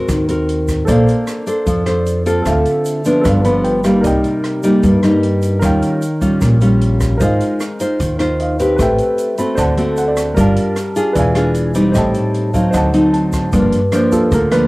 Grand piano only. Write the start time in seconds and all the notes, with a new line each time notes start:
0.85 A4 C5 D5
0.91 F5
2.42 A4 C5
2.46 E5 F5
3.22 A4 B4
3.26 D5 F5
3.45 B5
3.64 G5
3.85 F5
4.01 A#4 D5 D#5
4.07 G5
5.59 A#4 C#5
5.63 F5 G5
7.17 A#4 C5
7.21 D#5 F5
8.40 D#5 F5
8.76 B4 E5
8.82 G5
9.38 B5
9.55 C5 D5 A5
9.59 F#5 A5
9.98 F#5
10.08 D5
10.35 A#4 D5 F5
10.40 A5
11.13 B4 D5 F5
11.19 G#5
11.92 C5 D#5 G5
11.98 A5
12.54 F5
12.71 C5 D#5 F#5
12.77 A5
13.13 A5
13.95 C5
14.12 A#3 F4 A4
14.34 A#4
14.52 B4